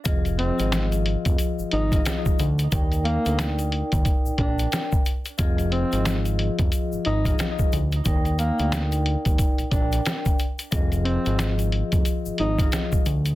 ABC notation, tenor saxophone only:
X:1
M:4/4
L:1/16
Q:"Swing 16ths" 1/4=90
K:Fdor
V:1 name="Tenor saxophone"
z2 C3 z4 z E2 z4 | z2 B,3 z4 z D2 z4 | z2 C3 z4 z E2 z4 | z2 B,3 z4 z D2 z4 |
z2 C3 z4 z E2 z4 |]